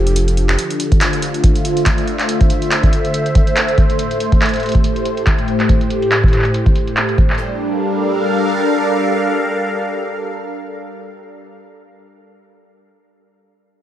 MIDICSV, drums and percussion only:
0, 0, Header, 1, 2, 480
1, 0, Start_track
1, 0, Tempo, 425532
1, 661, Time_signature, 4, 2, 24, 8
1, 15592, End_track
2, 0, Start_track
2, 0, Title_t, "Drums"
2, 75, Note_on_c, 9, 42, 37
2, 181, Note_off_c, 9, 42, 0
2, 181, Note_on_c, 9, 42, 84
2, 294, Note_off_c, 9, 42, 0
2, 315, Note_on_c, 9, 42, 37
2, 420, Note_off_c, 9, 42, 0
2, 420, Note_on_c, 9, 42, 36
2, 533, Note_off_c, 9, 42, 0
2, 555, Note_on_c, 9, 26, 71
2, 555, Note_on_c, 9, 39, 60
2, 661, Note_on_c, 9, 42, 79
2, 667, Note_off_c, 9, 26, 0
2, 667, Note_off_c, 9, 39, 0
2, 774, Note_off_c, 9, 42, 0
2, 795, Note_on_c, 9, 42, 36
2, 901, Note_off_c, 9, 42, 0
2, 901, Note_on_c, 9, 42, 60
2, 1013, Note_off_c, 9, 42, 0
2, 1035, Note_on_c, 9, 42, 35
2, 1036, Note_on_c, 9, 36, 98
2, 1141, Note_off_c, 9, 42, 0
2, 1141, Note_on_c, 9, 39, 110
2, 1141, Note_on_c, 9, 42, 84
2, 1148, Note_off_c, 9, 36, 0
2, 1254, Note_off_c, 9, 39, 0
2, 1254, Note_off_c, 9, 42, 0
2, 1276, Note_on_c, 9, 42, 36
2, 1381, Note_off_c, 9, 42, 0
2, 1381, Note_on_c, 9, 42, 59
2, 1494, Note_off_c, 9, 42, 0
2, 1515, Note_on_c, 9, 42, 34
2, 1620, Note_off_c, 9, 42, 0
2, 1620, Note_on_c, 9, 42, 81
2, 1621, Note_on_c, 9, 36, 111
2, 1733, Note_off_c, 9, 42, 0
2, 1734, Note_off_c, 9, 36, 0
2, 1754, Note_on_c, 9, 42, 35
2, 1860, Note_off_c, 9, 42, 0
2, 1860, Note_on_c, 9, 42, 57
2, 1973, Note_off_c, 9, 42, 0
2, 1994, Note_on_c, 9, 42, 35
2, 2099, Note_off_c, 9, 42, 0
2, 2099, Note_on_c, 9, 39, 111
2, 2099, Note_on_c, 9, 42, 84
2, 2102, Note_on_c, 9, 36, 99
2, 2212, Note_off_c, 9, 39, 0
2, 2212, Note_off_c, 9, 42, 0
2, 2214, Note_off_c, 9, 36, 0
2, 2234, Note_on_c, 9, 42, 34
2, 2340, Note_off_c, 9, 42, 0
2, 2340, Note_on_c, 9, 42, 36
2, 2453, Note_off_c, 9, 42, 0
2, 2475, Note_on_c, 9, 39, 57
2, 2475, Note_on_c, 9, 42, 33
2, 2581, Note_off_c, 9, 42, 0
2, 2581, Note_on_c, 9, 42, 81
2, 2588, Note_off_c, 9, 39, 0
2, 2693, Note_off_c, 9, 42, 0
2, 2715, Note_on_c, 9, 42, 35
2, 2716, Note_on_c, 9, 36, 109
2, 2820, Note_off_c, 9, 42, 0
2, 2820, Note_on_c, 9, 42, 61
2, 2829, Note_off_c, 9, 36, 0
2, 2932, Note_off_c, 9, 42, 0
2, 2956, Note_on_c, 9, 42, 36
2, 3062, Note_off_c, 9, 42, 0
2, 3062, Note_on_c, 9, 39, 106
2, 3062, Note_on_c, 9, 42, 80
2, 3175, Note_off_c, 9, 39, 0
2, 3175, Note_off_c, 9, 42, 0
2, 3197, Note_on_c, 9, 36, 94
2, 3197, Note_on_c, 9, 42, 34
2, 3303, Note_off_c, 9, 42, 0
2, 3303, Note_on_c, 9, 42, 58
2, 3309, Note_off_c, 9, 36, 0
2, 3416, Note_off_c, 9, 42, 0
2, 3437, Note_on_c, 9, 42, 33
2, 3541, Note_off_c, 9, 42, 0
2, 3541, Note_on_c, 9, 42, 79
2, 3654, Note_off_c, 9, 42, 0
2, 3677, Note_on_c, 9, 42, 34
2, 3781, Note_off_c, 9, 42, 0
2, 3781, Note_on_c, 9, 42, 58
2, 3782, Note_on_c, 9, 36, 107
2, 3894, Note_off_c, 9, 42, 0
2, 3895, Note_off_c, 9, 36, 0
2, 3916, Note_on_c, 9, 42, 34
2, 4022, Note_off_c, 9, 42, 0
2, 4022, Note_on_c, 9, 39, 107
2, 4022, Note_on_c, 9, 42, 82
2, 4135, Note_off_c, 9, 39, 0
2, 4135, Note_off_c, 9, 42, 0
2, 4156, Note_on_c, 9, 42, 34
2, 4261, Note_off_c, 9, 42, 0
2, 4261, Note_on_c, 9, 42, 34
2, 4262, Note_on_c, 9, 36, 93
2, 4374, Note_off_c, 9, 42, 0
2, 4375, Note_off_c, 9, 36, 0
2, 4396, Note_on_c, 9, 42, 33
2, 4501, Note_off_c, 9, 42, 0
2, 4501, Note_on_c, 9, 42, 81
2, 4614, Note_off_c, 9, 42, 0
2, 4636, Note_on_c, 9, 42, 36
2, 4741, Note_off_c, 9, 42, 0
2, 4741, Note_on_c, 9, 42, 60
2, 4854, Note_off_c, 9, 42, 0
2, 4876, Note_on_c, 9, 42, 36
2, 4877, Note_on_c, 9, 36, 105
2, 4982, Note_off_c, 9, 42, 0
2, 4982, Note_on_c, 9, 39, 100
2, 4982, Note_on_c, 9, 42, 78
2, 4989, Note_off_c, 9, 36, 0
2, 5027, Note_off_c, 9, 42, 0
2, 5027, Note_on_c, 9, 42, 65
2, 5062, Note_off_c, 9, 42, 0
2, 5062, Note_on_c, 9, 42, 51
2, 5094, Note_off_c, 9, 39, 0
2, 5116, Note_off_c, 9, 42, 0
2, 5116, Note_on_c, 9, 42, 44
2, 5142, Note_off_c, 9, 42, 0
2, 5142, Note_on_c, 9, 42, 36
2, 5187, Note_off_c, 9, 42, 0
2, 5187, Note_on_c, 9, 42, 30
2, 5222, Note_off_c, 9, 42, 0
2, 5222, Note_on_c, 9, 42, 27
2, 5255, Note_off_c, 9, 42, 0
2, 5255, Note_on_c, 9, 42, 33
2, 5289, Note_off_c, 9, 42, 0
2, 5289, Note_on_c, 9, 42, 41
2, 5322, Note_off_c, 9, 42, 0
2, 5322, Note_on_c, 9, 42, 47
2, 5356, Note_off_c, 9, 42, 0
2, 5356, Note_on_c, 9, 36, 95
2, 5356, Note_on_c, 9, 42, 35
2, 5460, Note_off_c, 9, 42, 0
2, 5460, Note_on_c, 9, 42, 81
2, 5469, Note_off_c, 9, 36, 0
2, 5573, Note_off_c, 9, 42, 0
2, 5596, Note_on_c, 9, 42, 36
2, 5701, Note_off_c, 9, 42, 0
2, 5701, Note_on_c, 9, 42, 58
2, 5814, Note_off_c, 9, 42, 0
2, 5835, Note_on_c, 9, 42, 36
2, 5941, Note_off_c, 9, 42, 0
2, 5941, Note_on_c, 9, 39, 101
2, 5941, Note_on_c, 9, 42, 82
2, 5942, Note_on_c, 9, 36, 103
2, 6054, Note_off_c, 9, 39, 0
2, 6054, Note_off_c, 9, 42, 0
2, 6055, Note_off_c, 9, 36, 0
2, 6075, Note_on_c, 9, 42, 34
2, 6180, Note_off_c, 9, 42, 0
2, 6180, Note_on_c, 9, 42, 34
2, 6293, Note_off_c, 9, 42, 0
2, 6315, Note_on_c, 9, 39, 55
2, 6315, Note_on_c, 9, 42, 33
2, 6421, Note_off_c, 9, 42, 0
2, 6421, Note_on_c, 9, 42, 82
2, 6422, Note_on_c, 9, 36, 91
2, 6428, Note_off_c, 9, 39, 0
2, 6533, Note_off_c, 9, 42, 0
2, 6534, Note_off_c, 9, 36, 0
2, 6555, Note_on_c, 9, 42, 38
2, 6660, Note_off_c, 9, 42, 0
2, 6660, Note_on_c, 9, 42, 63
2, 6773, Note_off_c, 9, 42, 0
2, 6795, Note_on_c, 9, 42, 36
2, 6900, Note_off_c, 9, 42, 0
2, 6900, Note_on_c, 9, 39, 103
2, 6900, Note_on_c, 9, 42, 83
2, 7013, Note_off_c, 9, 39, 0
2, 7013, Note_off_c, 9, 42, 0
2, 7036, Note_on_c, 9, 36, 107
2, 7087, Note_on_c, 9, 42, 36
2, 7140, Note_off_c, 9, 42, 0
2, 7140, Note_on_c, 9, 39, 24
2, 7140, Note_on_c, 9, 42, 59
2, 7149, Note_off_c, 9, 36, 0
2, 7173, Note_off_c, 9, 39, 0
2, 7173, Note_on_c, 9, 39, 30
2, 7207, Note_off_c, 9, 39, 0
2, 7207, Note_on_c, 9, 39, 37
2, 7241, Note_off_c, 9, 39, 0
2, 7241, Note_on_c, 9, 39, 44
2, 7252, Note_off_c, 9, 42, 0
2, 7275, Note_on_c, 9, 42, 36
2, 7354, Note_off_c, 9, 39, 0
2, 7380, Note_off_c, 9, 42, 0
2, 7380, Note_on_c, 9, 42, 85
2, 7493, Note_off_c, 9, 42, 0
2, 7515, Note_on_c, 9, 42, 36
2, 7516, Note_on_c, 9, 36, 89
2, 7620, Note_off_c, 9, 42, 0
2, 7620, Note_on_c, 9, 42, 60
2, 7628, Note_off_c, 9, 36, 0
2, 7733, Note_off_c, 9, 42, 0
2, 7755, Note_on_c, 9, 42, 37
2, 7860, Note_off_c, 9, 42, 0
2, 7860, Note_on_c, 9, 39, 104
2, 7860, Note_on_c, 9, 42, 83
2, 7973, Note_off_c, 9, 39, 0
2, 7973, Note_off_c, 9, 42, 0
2, 7995, Note_on_c, 9, 42, 36
2, 8101, Note_off_c, 9, 42, 0
2, 8101, Note_on_c, 9, 36, 102
2, 8101, Note_on_c, 9, 42, 36
2, 8214, Note_off_c, 9, 36, 0
2, 8214, Note_off_c, 9, 42, 0
2, 8234, Note_on_c, 9, 39, 54
2, 8287, Note_on_c, 9, 42, 33
2, 8347, Note_off_c, 9, 39, 0
2, 8400, Note_off_c, 9, 42, 0
2, 15592, End_track
0, 0, End_of_file